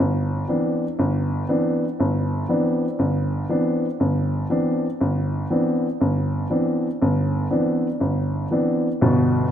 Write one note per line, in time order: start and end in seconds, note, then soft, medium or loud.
0.00 0.42 G1 medium
0.48 0.83 E3 soft
0.48 0.84 B3 soft
0.48 0.84 C4 soft
0.48 0.84 D4 soft
0.99 1.42 G1 medium
1.49 1.84 E3 soft
1.49 1.84 B3 soft
1.49 1.84 C4 soft
1.49 1.84 D4 medium
2.00 2.43 G1 medium
2.49 2.84 E3 soft
2.49 2.84 B3 soft
2.49 2.84 C4 soft
2.49 2.85 D4 medium
2.99 3.43 G1 medium
3.49 3.85 E3 soft
3.49 3.85 B3 soft
3.49 3.85 C4 soft
3.49 3.85 D4 medium
4.00 4.44 G1 medium
4.50 4.85 E3 medium
4.50 4.85 B3 soft
4.50 4.85 C4 soft
4.50 4.86 D4 medium
5.01 5.44 G1 medium
5.50 5.86 E3 soft
5.50 5.86 B3 soft
5.50 5.86 C4 soft
5.50 5.86 D4 soft
6.01 6.44 G1 medium
6.50 6.86 E3 soft
6.50 6.86 B3 soft
6.50 6.86 C4 soft
6.50 6.86 D4 soft
7.02 7.45 G1 medium
7.51 7.86 E3 soft
7.51 7.86 B3 soft
7.51 7.86 C4 soft
7.51 7.86 D4 medium
8.00 8.45 G1 medium
8.51 8.86 E3 soft
8.51 8.87 B3 soft
8.51 8.87 C4 soft
8.51 8.87 D4 medium
9.01 9.45 G1 medium
9.01 9.46 B2 medium